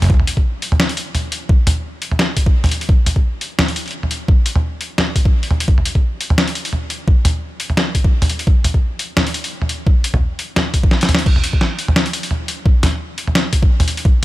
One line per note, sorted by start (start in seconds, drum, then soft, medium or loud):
0.02 mid tom medium
0.02 open hi-hat medium
0.04 mid tom medium
0.07 mid tom medium
0.09 kick loud
0.09 mid tom soft
0.11 mid tom soft
0.14 mid tom soft
0.17 mid tom soft
0.20 mid tom medium
0.27 closed hi-hat medium
0.37 kick medium
0.62 open hi-hat medium
0.72 mid tom medium
0.80 snare loud
0.80 closed hi-hat soft
0.89 open hi-hat medium
0.97 closed hi-hat medium
1.15 mid tom medium
1.15 open hi-hat medium
1.32 closed hi-hat medium
1.49 kick loud
1.67 closed hi-hat medium
1.67 mid tom medium
2.02 open hi-hat medium
2.12 mid tom medium
2.19 snare loud
2.19 closed hi-hat soft
2.37 kick medium
2.37 closed hi-hat medium
2.46 kick loud
2.64 mid tom medium
2.64 open hi-hat medium
2.66 open hi-hat soft
2.69 closed hi-hat medium
2.69 open hi-hat soft
2.81 open hi-hat medium
2.89 kick loud
3.06 closed hi-hat medium
3.06 mid tom medium
3.16 kick medium
3.41 open hi-hat medium
3.59 snare loud
3.59 closed hi-hat soft
3.59 mid tom medium
3.68 open hi-hat medium
3.76 closed hi-hat medium
3.86 open hi-hat soft
3.88 open hi-hat soft
3.91 open hi-hat medium
4.03 mid tom medium
4.11 closed hi-hat medium
4.28 kick loud
4.46 closed hi-hat medium
4.56 mid tom medium
4.81 open hi-hat medium
4.98 snare loud
4.98 closed hi-hat soft
4.98 mid tom medium
5.16 kick medium
5.16 closed hi-hat medium
5.25 kick loud
5.43 open hi-hat medium
5.51 mid tom medium
5.60 closed hi-hat medium
5.60 open hi-hat medium
5.68 kick loud
5.78 mid tom soft
5.85 closed hi-hat medium
5.95 kick medium
6.21 open hi-hat medium
6.30 mid tom medium
6.38 snare loud
6.38 closed hi-hat soft
6.48 open hi-hat medium
6.55 closed hi-hat medium
6.65 open hi-hat medium
6.73 mid tom medium
6.90 closed hi-hat medium
7.08 kick loud
7.25 closed hi-hat medium
7.25 mid tom medium
7.60 open hi-hat medium
7.70 mid tom soft
7.77 snare loud
7.77 closed hi-hat soft
7.95 kick medium
7.95 closed hi-hat medium
8.04 kick loud
8.22 mid tom medium
8.22 open hi-hat medium
8.29 closed hi-hat medium
8.39 open hi-hat medium
8.47 kick loud
8.64 closed hi-hat medium
8.64 mid tom medium
8.74 kick medium
8.99 open hi-hat medium
9.17 snare loud
9.17 closed hi-hat soft
9.17 mid tom medium
9.27 open hi-hat medium
9.34 closed hi-hat medium
9.44 open hi-hat medium
9.62 mid tom medium
9.69 closed hi-hat medium
9.87 kick loud
10.04 closed hi-hat medium
10.14 kick medium
10.14 mid tom medium
10.39 open hi-hat medium
10.56 snare loud
10.56 closed hi-hat soft
10.56 mid tom medium
10.74 kick medium
10.74 closed hi-hat medium
10.84 kick loud
10.91 snare medium
11.01 snare medium
11.01 open hi-hat medium
11.09 closed hi-hat medium
11.09 mid tom medium
11.15 snare loud
11.15 open hi-hat medium
11.26 kick loud
11.26 crash loud
11.36 mid tom medium
11.44 closed hi-hat medium
11.53 kick medium
11.61 snare medium
11.79 open hi-hat medium
11.88 mid tom medium
11.96 snare loud
11.96 closed hi-hat soft
12.06 open hi-hat medium
12.13 closed hi-hat medium
12.23 open hi-hat medium
12.31 mid tom medium
12.48 closed hi-hat medium
12.66 kick loud
12.83 snare medium
12.83 closed hi-hat medium
12.83 mid tom medium
13.18 open hi-hat medium
13.28 mid tom medium
13.35 snare loud
13.35 closed hi-hat soft
13.53 kick medium
13.53 closed hi-hat medium
13.63 kick loud
13.80 mid tom medium
13.80 open hi-hat medium
13.88 closed hi-hat medium
13.97 open hi-hat medium
14.05 kick loud